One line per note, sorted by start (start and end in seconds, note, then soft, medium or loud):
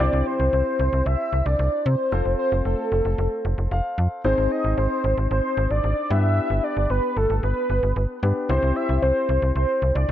0.00 2.08 C4 medium
0.00 2.08 E4 medium
0.00 2.08 G4 medium
0.00 2.08 C5 medium
0.00 0.28 D5 loud
0.13 0.23 C2 loud
0.26 0.52 C5 loud
0.40 0.50 C2 medium
0.53 0.63 C2 loud
0.53 1.08 C5 loud
0.80 0.89 C2 loud
0.93 1.03 C2 loud
1.06 1.16 C2 loud
1.06 1.47 E5 loud
1.33 1.43 C2 medium
1.46 1.56 C2 loud
1.46 1.87 D5 loud
1.59 1.69 C2 loud
1.86 1.96 C3 loud
1.86 2.38 C5 loud
2.12 2.22 F1 loud
2.12 4.21 C4 medium
2.12 4.21 F4 medium
2.12 4.21 A4 medium
2.12 4.21 C5 medium
2.26 2.35 F1 medium
2.39 2.63 C5 medium
2.52 2.62 F1 loud
2.65 2.75 F1 medium
2.65 3.67 A4 medium
2.92 3.02 F1 loud
3.05 3.15 F1 loud
3.18 3.28 F1 loud
3.45 3.55 F1 loud
3.58 3.68 F1 loud
3.71 3.81 F1 loud
3.71 4.21 F5 medium
3.98 4.08 F2 medium
4.25 4.34 G#1 loud
4.25 6.07 C4 medium
4.25 6.07 D#4 medium
4.25 6.07 G#4 medium
4.25 6.07 C5 medium
4.25 4.53 C5 medium
4.38 4.48 G#1 medium
4.51 4.77 D#5 medium
4.64 4.74 G#1 medium
4.78 4.88 G#1 loud
4.78 5.27 C5 loud
5.04 5.14 G#1 loud
5.18 5.28 G#1 loud
5.31 5.41 G#1 loud
5.31 5.72 C5 loud
5.57 5.67 G#1 loud
5.71 5.81 G#1 medium
5.71 6.12 D5 loud
5.84 5.94 G#1 medium
6.10 6.40 G2 loud
6.10 8.19 B3 medium
6.10 8.19 D4 medium
6.10 8.19 G4 medium
6.10 8.19 B4 medium
6.10 6.65 E5 loud
6.50 6.60 G1 medium
6.64 6.92 D5 loud
6.77 6.87 G1 loud
6.90 7.00 G1 medium
6.90 7.18 B4 loud
7.17 7.27 G1 loud
7.17 7.43 A4 medium
7.30 7.40 G1 medium
7.43 7.53 G1 loud
7.43 8.19 B4 medium
7.70 7.80 G1 loud
7.83 7.93 G1 loud
7.96 8.06 G1 loud
8.23 8.33 G2 loud
8.23 8.49 B3 medium
8.23 8.49 D4 soft
8.23 8.48 G4 medium
8.23 8.49 B4 medium
8.49 8.59 C2 loud
8.49 10.12 C4 medium
8.49 10.12 E4 medium
8.49 10.12 G4 medium
8.49 8.77 C5 loud
8.49 10.12 C5 medium
8.63 8.73 C2 loud
8.76 9.02 E5 loud
8.89 8.99 C2 medium
9.02 9.12 C2 medium
9.02 9.52 C5 loud
9.29 9.39 C2 loud
9.42 9.52 C2 loud
9.55 9.66 C2 loud
9.55 9.93 C5 loud
9.82 9.92 C2 loud
9.95 10.05 C2 loud
9.95 10.12 D5 loud
10.09 10.12 C2 loud